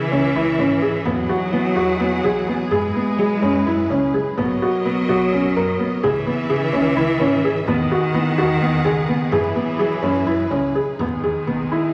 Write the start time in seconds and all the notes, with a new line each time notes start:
Already playing: E3 C#4 B4 E5
0.12 C#2 C#4, frame drum
0.35 C#2 E4
0.58 G#1 C#4, frame drum
0.82 G#4
1.05 E2 E3 F#3 B3 D#4 G#4 F#5, frame drum
1.29 F#4
1.53 E3 B3
1.76 E2 F#4, frame drum
2.00 E2 B3
2.24 B1 G#4, frame drum
2.48 B3
2.70 F#2 F#3 G#3 E4 G#4 B4, frame drum
2.95 B3, frame drum
3.18 F#3 G#4
3.42 F#2 C#4, frame drum
3.66 F#2 E4, frame drum
3.90 C#2 C#4, frame drum
4.14 G#4
4.37 B1 F#3 B3 A#4 C#5 D#5, frame drum
4.62 F#4
4.85 B2 B3
5.09 B1 F#4, frame drum
5.33 B1 C#4
5.56 F#2 A#4, frame drum
5.79 B3
6.02 C#2 E3 C#4 G#4 B4 E5, frame drum
6.27 B3
6.50 C#3 G#4
6.73 C#2 C#4, frame drum
6.97 C#2 E4
7.20 G#1 C#4, frame drum
7.44 G#4
7.66 E2 D#3 B3 D#4 G#4 F#5, frame drum
7.92 F#4
8.14 E3 B3
8.38 E2 F#4, frame drum
8.61 E2 B3
8.84 C#2 G#4, frame drum
9.09 B3
9.31 F#2 E3 F#3 E4 G#4 B4, frame drum
9.56 B3
9.79 F#3 G#4
10.02 F#2 C#4, frame drum
10.27 F#2 E4
10.51 C#2 C#4, frame drum
10.75 G#4, frame drum
10.98 E2 D#3 G#3 B3 D#4 G#4, frame drum
11.24 E2 G#4
11.47 B1 B3, frame drum
11.71 E4, frame drum